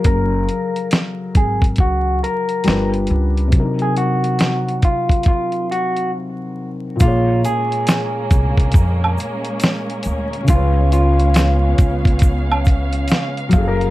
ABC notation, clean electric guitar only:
X:1
M:4/4
L:1/16
Q:"Swing 16ths" 1/4=69
K:Bbm
V:1 name="Clean electric guitar"
B4 z2 A z G2 B3 z3 | z A G4 F2 F2 G2 z4 | F2 A6- A z6 z | F2 F6- F z6 z |]